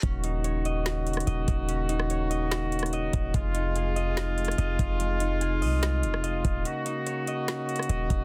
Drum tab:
HH |x-----x-----x-----x-----x-----x-x-x-x-----x-----|x-----x-----x-----x-----x-----x-x-x-x-----x-----|x-----x-----x-----x-----x-----x-x-x-x-----x-----|x-----x-----x-----o-----x-----x-----x-----x-----|
SD |------------------------o--------r--------------|---------r--------------o--------r--------------|------------------------o--------r--------------|------------------------o--------r--------------|
BD |o-----------------------------------------o-----|------------------------------------------o-----|o-----------------------------------------o-----|------------------------------------------o-----|

HH |x-----x-----x-----x-----x-----x-x-x-x-----x-----|
SD |------------------------o--------r--------------|
BD |------------------------------------------o-----|